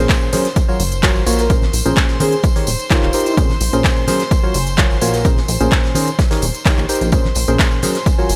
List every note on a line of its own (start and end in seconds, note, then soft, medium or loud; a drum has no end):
0.00 0.30 A#2 medium
0.00 0.30 C#4 medium
0.00 8.36 F4 medium
0.00 0.30 G#4 medium
0.00 0.30 A#4 medium
0.00 8.36 A#4 medium
0.00 0.30 C5 loud
0.00 7.11 C5 medium
0.00 8.36 D#5 medium
0.00 7.11 C6 medium
0.05 2.44 G#5 medium
0.05 snare loud
0.09 kick loud
0.09 clap loud
0.09 closed hi-hat medium
0.09 tambourine medium
0.21 tambourine soft
0.33 0.48 F#3 medium
0.33 0.48 C#4 medium
0.33 0.48 G#4 medium
0.33 0.48 A#4 medium
0.33 0.48 C5 loud
0.33 snare medium
0.33 closed hi-hat medium
0.33 open hi-hat loud
0.33 tambourine medium
0.33 high conga medium
0.45 snare medium
0.45 closed hi-hat medium
0.45 tambourine soft
0.56 kick loud
0.56 closed hi-hat medium
0.56 tambourine medium
0.68 0.83 F#3 medium
0.68 0.83 F4 medium
0.68 0.83 F#4 medium
0.68 0.83 A#4 medium
0.68 0.83 C#5 medium
0.68 tambourine soft
0.80 1.22 F#1 medium
0.80 closed hi-hat medium
0.80 open hi-hat loud
0.80 tambourine medium
0.92 closed hi-hat medium
0.92 tambourine soft
1.03 1.23 F#3 loud
1.03 1.23 F4 medium
1.03 1.23 F#4 medium
1.03 1.23 A#4 medium
1.03 1.23 C#5 loud
1.03 kick loud
1.03 snare loud
1.03 clap loud
1.03 closed hi-hat medium
1.03 tambourine soft
1.16 tambourine soft
1.26 1.68 A#1 medium
1.26 1.47 A#3 medium
1.26 1.47 F4 medium
1.26 1.47 F#4 medium
1.26 1.47 A#4 medium
1.26 1.47 C#5 loud
1.26 closed hi-hat medium
1.26 open hi-hat loud
1.26 tambourine medium
1.33 closed hi-hat medium
1.38 1.53 A#4 medium
1.38 snare soft
1.38 closed hi-hat medium
1.38 tambourine soft
1.50 1.65 A#2 medium
1.50 1.65 C#4 medium
1.50 1.65 G#4 medium
1.50 1.65 A#4 medium
1.50 1.65 C5 medium
1.50 kick loud
1.50 closed hi-hat medium
1.50 tambourine medium
1.62 snare medium
1.62 tambourine soft
1.62 high conga medium
1.73 1.82 A#1 loud
1.73 closed hi-hat medium
1.73 open hi-hat loud
1.73 tambourine medium
1.86 1.94 A#1 loud
1.86 2.18 A#2 medium
1.86 2.18 C#4 medium
1.86 2.18 G#4 medium
1.86 2.18 A#4 medium
1.86 2.18 C5 loud
1.86 closed hi-hat medium
1.86 tambourine soft
1.97 kick loud
1.97 snare loud
1.97 clap loud
1.97 closed hi-hat medium
1.97 tambourine medium
2.08 snare medium
2.08 tambourine soft
2.20 2.35 D#3 medium
2.20 2.35 C#4 medium
2.20 2.35 G#4 medium
2.20 2.35 A#4 medium
2.20 2.35 C5 loud
2.20 closed hi-hat medium
2.20 open hi-hat loud
2.20 tambourine medium
2.20 high conga loud
2.32 closed hi-hat medium
2.32 tambourine soft
2.43 kick loud
2.43 closed hi-hat medium
2.43 tambourine medium
2.56 2.70 D#3 medium
2.56 2.70 D#4 medium
2.56 2.70 G4 medium
2.56 2.70 A#4 medium
2.56 2.70 C#5 medium
2.56 snare soft
2.56 open hi-hat medium
2.56 tambourine soft
2.67 2.76 D#1 medium
2.67 closed hi-hat medium
2.67 open hi-hat loud
2.67 tambourine medium
2.79 closed hi-hat medium
2.79 tambourine soft
2.90 3.11 D#3 loud
2.90 3.11 D#4 medium
2.90 3.42 F4 medium
2.90 3.11 G4 medium
2.90 3.11 A#4 medium
2.90 3.11 C#5 loud
2.90 kick loud
2.90 snare loud
2.90 clap loud
2.90 closed hi-hat medium
2.90 tambourine medium
3.02 3.11 D#1 medium
3.02 clap soft
3.02 tambourine soft
3.13 3.35 D#4 medium
3.13 3.35 G4 medium
3.13 3.35 A#4 medium
3.13 3.35 C5 loud
3.13 closed hi-hat medium
3.13 open hi-hat loud
3.13 tambourine medium
3.20 closed hi-hat medium
3.26 closed hi-hat medium
3.26 tambourine soft
3.37 3.53 A#2 medium
3.37 3.53 C#4 medium
3.37 3.53 G#4 medium
3.37 3.53 A#4 medium
3.37 3.53 C5 medium
3.37 kick loud
3.37 closed hi-hat medium
3.37 tambourine medium
3.49 snare soft
3.49 tambourine soft
3.49 high conga medium
3.61 3.70 A#1 loud
3.61 closed hi-hat medium
3.61 open hi-hat loud
3.61 tambourine loud
3.73 3.81 A#1 loud
3.73 4.05 A#2 medium
3.73 4.05 C#4 medium
3.73 4.05 G#4 medium
3.73 4.05 A#4 medium
3.73 4.05 C5 loud
3.73 closed hi-hat medium
3.73 tambourine soft
3.80 6.19 G#5 medium
3.84 kick loud
3.84 snare loud
3.84 clap loud
3.84 closed hi-hat medium
3.84 tambourine medium
3.96 tambourine soft
4.07 4.23 F#3 medium
4.07 4.23 C#4 medium
4.07 4.23 G#4 medium
4.07 4.23 A#4 medium
4.07 4.23 C5 loud
4.07 snare medium
4.07 closed hi-hat medium
4.07 open hi-hat loud
4.07 tambourine loud
4.07 high conga medium
4.19 snare medium
4.19 closed hi-hat soft
4.19 tambourine soft
4.31 kick loud
4.31 closed hi-hat medium
4.31 tambourine medium
4.43 4.58 F#3 medium
4.43 4.58 F4 medium
4.43 4.58 F#4 medium
4.43 4.58 A#4 medium
4.43 4.58 C#5 loud
4.43 tambourine soft
4.54 4.97 F#1 medium
4.54 closed hi-hat medium
4.54 open hi-hat loud
4.54 tambourine medium
4.67 closed hi-hat medium
4.67 tambourine soft
4.77 4.98 F#3 loud
4.77 4.98 F4 medium
4.77 4.98 F#4 medium
4.77 4.98 A#4 medium
4.77 4.98 C#5 loud
4.77 kick loud
4.77 snare loud
4.77 clap loud
4.77 closed hi-hat medium
4.77 tambourine medium
4.91 tambourine soft
5.01 5.43 A#1 medium
5.01 5.22 A#3 medium
5.01 5.22 F4 medium
5.01 5.22 F#4 medium
5.01 5.22 A#4 medium
5.01 5.22 C#5 loud
5.01 closed hi-hat medium
5.01 open hi-hat loud
5.01 tambourine loud
5.07 closed hi-hat medium
5.13 5.28 A#4 medium
5.13 snare medium
5.13 closed hi-hat soft
5.13 tambourine soft
5.25 5.40 A#2 medium
5.25 5.40 C#4 medium
5.25 5.40 G#4 medium
5.25 5.40 A#4 medium
5.25 5.40 C5 medium
5.25 kick loud
5.25 closed hi-hat medium
5.25 tambourine soft
5.37 snare medium
5.37 tambourine soft
5.37 high conga medium
5.48 5.57 A#1 loud
5.48 closed hi-hat medium
5.48 open hi-hat loud
5.48 tambourine medium
5.61 5.69 A#1 loud
5.61 5.93 A#2 medium
5.61 5.93 C#4 medium
5.61 5.93 G#4 medium
5.61 5.93 A#4 medium
5.61 5.93 C5 loud
5.61 closed hi-hat soft
5.61 tambourine soft
5.71 kick loud
5.71 snare loud
5.71 clap loud
5.71 closed hi-hat medium
5.71 tambourine soft
5.84 snare medium
5.84 tambourine soft
5.95 6.10 D#3 medium
5.95 6.10 C#4 medium
5.95 6.10 G#4 medium
5.95 6.10 A#4 medium
5.95 6.10 C5 loud
5.95 closed hi-hat medium
5.95 open hi-hat loud
5.95 tambourine medium
5.95 high conga medium
6.07 closed hi-hat soft
6.07 tambourine soft
6.19 kick loud
6.19 snare loud
6.19 closed hi-hat medium
6.19 tambourine medium
6.31 6.45 D#3 medium
6.31 6.45 D#4 medium
6.31 6.45 G4 medium
6.31 6.45 A#4 medium
6.31 6.45 C#5 medium
6.31 snare loud
6.31 closed hi-hat medium
6.31 open hi-hat medium
6.31 tambourine soft
6.42 6.51 D#1 medium
6.42 closed hi-hat medium
6.42 open hi-hat loud
6.42 tambourine loud
6.54 closed hi-hat medium
6.54 tambourine soft
6.65 6.86 D#3 loud
6.65 6.86 D#4 medium
6.65 6.86 G4 medium
6.65 6.86 A#4 medium
6.65 6.86 C#5 loud
6.65 kick loud
6.65 snare loud
6.65 clap loud
6.65 closed hi-hat medium
6.65 tambourine medium
6.78 6.86 A#1 loud
6.78 clap soft
6.78 tambourine soft
6.89 7.10 D#4 medium
6.89 7.10 G4 medium
6.89 7.10 A#4 medium
6.89 7.10 C5 loud
6.89 closed hi-hat medium
6.89 open hi-hat loud
6.89 tambourine loud
6.95 closed hi-hat medium
7.01 7.31 A#1 loud
7.01 closed hi-hat soft
7.01 tambourine soft
7.12 7.28 A#2 medium
7.12 7.28 C#4 medium
7.12 7.28 G#4 medium
7.12 7.28 A#4 medium
7.12 8.36 C5 medium
7.12 7.28 C5 medium
7.12 8.36 C6 medium
7.12 kick loud
7.12 closed hi-hat medium
7.12 tambourine soft
7.24 snare soft
7.24 tambourine soft
7.24 high conga medium
7.35 7.45 A#1 loud
7.35 closed hi-hat medium
7.35 open hi-hat loud
7.35 tambourine medium
7.47 7.56 A#1 loud
7.47 7.80 A#2 medium
7.47 7.80 C#4 medium
7.47 7.80 G#4 medium
7.47 7.80 A#4 medium
7.47 7.80 C5 loud
7.47 closed hi-hat soft
7.47 tambourine soft
7.55 8.36 G#5 loud
7.59 kick loud
7.59 snare loud
7.59 clap loud
7.59 closed hi-hat medium
7.59 tambourine medium
7.71 tambourine soft
7.82 7.98 F#3 medium
7.82 7.98 C#4 medium
7.82 7.98 G#4 medium
7.82 7.98 A#4 medium
7.82 7.98 C5 loud
7.82 snare medium
7.82 closed hi-hat medium
7.82 open hi-hat loud
7.82 tambourine loud
7.82 high conga medium
7.95 snare soft
7.95 closed hi-hat soft
7.95 tambourine soft
8.06 kick loud
8.06 closed hi-hat medium
8.06 tambourine medium
8.18 8.33 F#3 medium
8.18 8.33 F4 medium
8.18 8.33 F#4 medium
8.18 8.33 A#4 medium
8.18 8.33 C#5 medium
8.18 tambourine soft
8.29 8.36 F#1 medium
8.29 closed hi-hat medium
8.29 open hi-hat loud
8.29 tambourine medium